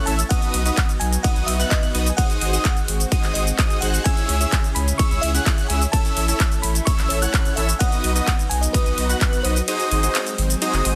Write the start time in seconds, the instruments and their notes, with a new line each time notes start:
Already playing: analog synth pad A3 C#4 E4
0.06 sub bass A1, supersaw synth C#4 E4 A4 C#5 E5, fm electric piano A5, analog synth lead E6, open hi-hat
0.19 closed hi-hat, shaker
0.29 analog synth pad F#3 B3 D#4, supersaw synth B3 D#4 F#4 B4 D#5, fm electric piano F#5, analog synth lead D#6, kick, closed hi-hat, ride, shaker
0.42 closed hi-hat, shaker
0.54 sub bass B1, open hi-hat
0.66 supersaw synth B3 D#4 F#4 B4 D#5, analog synth lead D#6, closed hi-hat, shaker
0.77 kick, clap, closed hi-hat, ride, shaker
0.89 closed hi-hat, shaker
1.00 sub bass B1, fm electric piano G#5, open hi-hat
1.13 closed hi-hat, shaker
1.23 supersaw synth B3 D#4 F#4 B4 D#5, fm electric piano F#5, analog synth lead D#6, kick, closed hi-hat, ride, shaker
1.36 sub bass B1, closed hi-hat, shaker
1.46 sub bass B1, fm electric piano E5, open hi-hat
1.60 supersaw synth B3 D#4 F#4 B4 F#5, analog synth lead F#6, closed hi-hat, shaker
1.70 fm electric piano D#5, kick, clap, closed hi-hat, ride, shaker
1.83 closed hi-hat, shaker
1.95 sub bass B1, supersaw synth B3 D#4 F#4 B4 D#5, analog synth lead D#6, open hi-hat
2.06 fm electric piano G#5, closed hi-hat, shaker
2.17 analog synth pad G#3 C4 F#4, supersaw synth D#4 F#4 G#4 C5 D#5, fm electric piano F#5, analog synth lead D#6, kick, closed hi-hat, ride, shaker
2.30 closed hi-hat, shaker
2.41 sub bass G#1, open hi-hat
2.53 supersaw synth D#4 F#4 G#4 C5 D#5, analog synth lead D#6, closed hi-hat, shaker
2.64 fm electric piano F#5, kick, clap, closed hi-hat, ride, shaker
2.77 closed hi-hat, shaker
2.88 sub bass G#1, open hi-hat
3.00 closed hi-hat, shaker
3.12 supersaw synth D#4 F#4 G#4 C5 D#5, analog synth lead D#6, kick, closed hi-hat, ride, shaker
3.24 sub bass G#1, clap, closed hi-hat, shaker
3.34 sub bass G#1, fm electric piano D#5, open hi-hat
3.47 closed hi-hat, shaker
3.59 supersaw synth D#4 F#4 G#4 C5 D#5, analog synth lead D#6, kick, clap, closed hi-hat, ride, shaker
3.70 closed hi-hat, shaker
3.81 sub bass G#1, supersaw synth D#4 F#4 G#4 C5 F#5, fm electric piano F#5, analog synth lead F#6, open hi-hat
3.94 closed hi-hat, shaker
4.04 analog synth pad C#3 C#4 E4 G#4, supersaw synth C#4 E4 G#4 C#5 E5, fm electric piano G#5, analog synth lead E6, kick, closed hi-hat, ride, shaker
4.17 closed hi-hat, shaker
4.29 sub bass C#2, open hi-hat
4.41 supersaw synth C#4 E4 G#4 C#5 E5, analog synth lead E6, closed hi-hat, shaker
4.52 kick, clap, closed hi-hat, ride, shaker
4.64 closed hi-hat, shaker
4.75 sub bass C#2, fm electric piano B5, open hi-hat
4.88 closed hi-hat, shaker
4.98 supersaw synth C#4 E4 G#4 C#5 E5, fm electric piano C#6, analog synth lead E6, kick, closed hi-hat, ride, shaker
5.11 sub bass C#2, closed hi-hat, shaker
5.21 sub bass C#2, fm electric piano E5, open hi-hat
5.34 supersaw synth C#4 E4 G#4 C#5 F#5, analog synth lead F#6, closed hi-hat, shaker
5.46 kick, clap, closed hi-hat, ride, shaker
5.58 closed hi-hat, shaker
5.68 sub bass C#2, supersaw synth C#4 E4 G#4 C#5 E5, fm electric piano G#5, analog synth lead E6, open hi-hat
5.82 closed hi-hat, shaker
5.92 analog synth pad A3 C#4 E4, supersaw synth C#4 E4 A4 C#5 E5, fm electric piano A5, analog synth lead E6, kick, closed hi-hat, ride, shaker
6.05 closed hi-hat, shaker
6.17 sub bass A1, open hi-hat
6.28 supersaw synth C#4 E4 A4 C#5 E5, analog synth lead E6, closed hi-hat, shaker
6.40 kick, clap, closed hi-hat, ride, shaker
6.52 closed hi-hat, shaker
6.62 sub bass A1, fm electric piano B5, open hi-hat
6.75 closed hi-hat, shaker
6.85 supersaw synth C#4 E4 A4 C#5 E5, fm electric piano C#6, analog synth lead E6, kick, closed hi-hat, ride, shaker
6.99 sub bass A1, clap, closed hi-hat, shaker
7.09 sub bass A1, fm electric piano C#5, open hi-hat
7.22 supersaw synth C#4 E4 A4 C#5 F#5, analog synth lead F#6, closed hi-hat, shaker
7.34 kick, clap, closed hi-hat, ride, shaker
7.45 closed hi-hat, shaker
7.56 sub bass A1, supersaw synth C#4 E4 A4 C#5 E5, fm electric piano E5, analog synth lead E6, open hi-hat
7.69 closed hi-hat, shaker
7.79 analog synth pad F#3 B3 D#4, supersaw synth B3 D#4 F#4 B4 D#5, fm electric piano F#5, analog synth lead D#6, kick, closed hi-hat, ride, shaker
7.92 closed hi-hat, shaker
8.04 sub bass B1, open hi-hat
8.16 supersaw synth B3 D#4 F#4 B4 D#5, analog synth lead D#6, closed hi-hat, shaker
8.27 kick, clap, closed hi-hat, ride, shaker
8.39 closed hi-hat, shaker
8.49 sub bass B1, fm electric piano G#5, open hi-hat
8.61 fm electric piano D#5, closed hi-hat, shaker
8.73 supersaw synth B3 D#4 F#4 B4 D#5, fm electric piano B4, analog synth lead D#6, kick, closed hi-hat, ride, shaker
8.86 sub bass B1, closed hi-hat, shaker
8.98 sub bass B1, open hi-hat
9.09 supersaw synth B3 D#4 F#4 B4 F#5, analog synth lead F#6, closed hi-hat, shaker
9.21 kick, clap, closed hi-hat, ride, shaker
9.33 closed hi-hat, shaker
9.43 sub bass B1, supersaw synth B3 D#4 F#4 B4 D#5, fm electric piano C5, analog synth lead D#6, open hi-hat
9.56 closed hi-hat, shaker
9.68 analog synth pad G#3 C4, supersaw synth D#4 F#4 G#4 C5 D#5, analog synth lead D#6, closed hi-hat, ride, shaker
9.80 closed hi-hat, shaker
9.91 sub bass G#1, open hi-hat
10.03 supersaw synth D#4 F#4 G#4 C5 D#5, analog synth lead D#6, closed hi-hat, shaker
10.15 clap, closed hi-hat, ride, shaker
10.27 closed hi-hat, shaker
10.38 sub bass G#1, open hi-hat
10.50 closed hi-hat, shaker
10.62 supersaw synth D#4 F#4 G#4 C5 D#5, analog synth lead D#6, closed hi-hat, ride, shaker
10.74 sub bass F#1, clap, closed hi-hat, shaker
10.85 sub bass G#1, open hi-hat